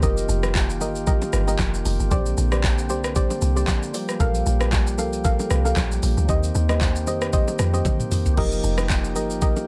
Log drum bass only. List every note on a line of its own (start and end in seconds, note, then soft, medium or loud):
0.03 0.25 F1 loud
0.29 0.82 F1 loud
0.81 1.16 G1 medium
1.33 1.56 G1 medium
1.59 1.81 F1 loud
1.85 1.98 F1 loud
2.00 2.10 G1 medium
2.11 2.34 A#1 loud
2.37 2.91 A#1 loud
2.90 3.24 C2 loud
3.42 3.64 C2 medium
4.20 4.42 A#1 loud
4.46 5.00 A#1 loud
4.98 5.33 C2 medium
5.51 5.73 C2 loud
5.76 5.99 A#1 medium
6.03 6.15 A#1 loud
6.17 6.27 D2 medium
6.29 6.51 D#2 loud
6.55 7.09 D#2 loud
7.07 7.42 F2 medium
7.59 7.82 F2 loud
8.37 8.60 F1 loud
8.64 9.17 F1 loud
9.16 9.50 G1 medium